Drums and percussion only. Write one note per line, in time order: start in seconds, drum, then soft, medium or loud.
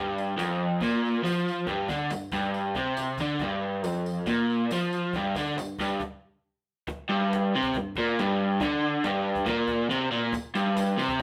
0.18 tambourine medium
0.39 cajon slap loud
0.39 tambourine medium
0.81 cajon bass medium
0.81 tambourine medium
1.05 tambourine soft
1.25 cajon slap loud
1.25 tambourine medium
1.48 tambourine medium
1.67 cajon bass loud
1.89 cajon bass loud
1.89 tambourine medium
2.10 cajon slap loud
2.10 tambourine medium
2.32 cajon bass loud
2.32 tambourine medium
2.54 tambourine medium
2.75 cajon bass loud
2.75 tambourine soft
2.97 cajon slap loud
2.97 tambourine medium
3.18 cajon bass loud
3.18 tambourine medium
3.39 cajon bass loud
3.84 cajon slap loud
3.84 tambourine loud
4.06 tambourine medium
4.26 cajon bass loud
4.26 tambourine medium
4.50 tambourine soft
4.71 cajon slap loud
4.71 tambourine loud
4.93 tambourine medium
5.13 cajon bass loud
5.13 tambourine soft
5.35 cajon bass loud
5.35 tambourine medium
5.58 cajon slap loud
5.58 tambourine loud
5.78 cajon bass loud
5.78 tambourine medium
6.00 cajon bass loud
6.00 cajon slap medium
6.87 cajon bass loud
7.33 cajon slap loud
7.63 cajon bass medium
7.74 cajon bass medium
7.96 cajon bass medium
8.19 cajon slap loud
8.60 cajon bass loud
9.04 cajon slap loud
9.35 cajon bass medium
9.46 cajon bass loud
9.68 cajon bass medium
9.91 cajon slap loud
10.33 cajon bass loud
10.33 tambourine medium
10.55 tambourine medium
10.77 cajon slap loud
10.77 tambourine medium
10.99 tambourine medium
11.08 cajon bass medium